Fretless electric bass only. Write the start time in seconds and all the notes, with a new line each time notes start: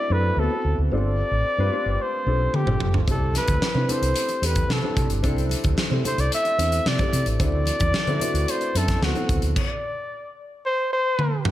0.10 F#2
0.37 D2
0.65 D2
0.78 D2
0.91 G1
1.31 A1
1.58 G2
1.86 G1
2.27 B1
2.66 G1
2.81 F1
2.94 G1
3.07 C2
3.48 D2
3.75 C3
4.02 C2
4.42 E2
4.69 C3
4.97 C3
5.10 G1
5.24 C2
5.64 D2
5.91 C3
6.18 C2
6.59 E2
6.86 C3
7.13 C3
7.26 A1
7.40 D2
7.80 E2
7.94 muted fretless electric bass stroke
8.07 D3
8.34 D2
8.75 F#2
9.02 D2
9.29 D2
9.43 D2